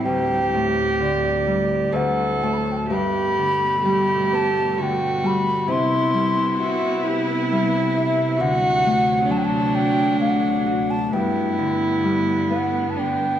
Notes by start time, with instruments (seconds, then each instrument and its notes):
Already playing: harp A2 E3 C4 E4, string section A2 G3
0.04 harp D2, string section D2, cello G4, flute G5
0.54 harp A2
1.00 harp D3, flute D5
1.47 harp G3
1.93 harp D2, string section F#3, cello A4, flute F#5
2.42 harp A2, flute A5
2.53 flute B5
2.58 flute A5
2.72 flute G5
2.77 flute A5
2.89 harp G2, string section B2 G3 A3, cello G4
2.93 flute B5
3.37 harp D3
3.82 harp G3, cello G4
4.32 harp B3, flute A5
4.74 harp D3, flute A5
4.78 cello F#4
4.82 flute G5
5.24 harp G3, flute B5
5.67 harp C3, string section C3 B3 E4, cello E4
5.72 flute C6
6.14 harp G3
6.58 harp E4, cello F#4
7.02 cello E4
7.06 harp G4
7.51 harp G3, flute E5
7.97 harp E4
8.37 string section D2 F#3, harp D3, cello F#4
8.41 flute F#5
8.86 harp A3
9.25 cello D4
9.30 harp F#3, flute A5
9.38 flute G5
9.44 flute A5
9.74 harp A4, flute G5
10.20 harp A3, flute F#5
10.66 harp F#4
10.90 flute A5
11.10 harp G2, string section G2 D3 B3, cello E4, flute G5
11.58 harp D3
12.04 harp G3
12.50 harp B3, flute F#5
12.90 flute A5
12.97 harp D3, cello D4, flute G5